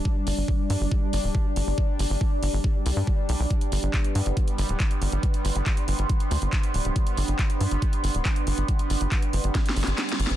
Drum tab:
HH |------o-----------o-----------o-----------o-----|------o-----------o-----------o-----------o-----|x--x--o--x--x--x--o--x--x--x--o--x--x--x--o--x--|x--x--o--x--x--x--o--x--x--x--o--x--x--x--o--x--|
CP |------------------------------------------------|------------------------------------------------|------------x-----------------------x-----------|------------x-----------------------x-----------|
SD |------------------------------------------------|------------------------------------------------|------------------------------------------------|------------------------------------------------|
BD |o-----------o-----------o-----------o-----------|o-----------o-----------o-----------o-----------|o-----------o-----------o-----------o-----------|o-----------o-----------o-----------o-----------|

HH |x--x--o--x--x--x--o--x--x--x--o--x--x--x--o--x--|x--x--o--x--x--x--o--x--x--x--o--x--x--x--o--x--|
CP |------------x-----------------------x-----------|------------x-----------------------x-----------|
SD |------------------------------------------------|------------------------o---o---o---o---o---o---|
BD |o-----------o-----------o-----------o-----------|o-----------o-----------o-----------------------|